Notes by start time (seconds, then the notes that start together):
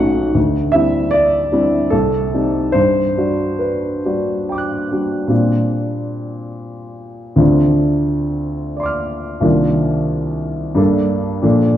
Already playing: B1 A3 C#4 D#4 F#4 F#5
0.34 D2
0.72 G3 C4 D4 E4 E5
1.11 D5
1.52 G3 C4 D4 E4
1.90 C2 A4
2.34 G3 C4 D#4 G4
2.72 G2 C5
3.17 G3 D4 F#4
3.59 B4
4.05 G3 D4 F#4
4.49 G5
4.55 D6 F#6
4.92 G3 D4 F#4
5.27 A#2 G3 C4 D4 F4
7.36 D2 D3 C4 D4 F4
8.77 D5 C6
8.83 D6 F6
9.41 C2 D#3 A#3 D4 F4
10.75 G2 G3 A#3 D4 A4
11.42 A#2 F3 A#3 D4 A4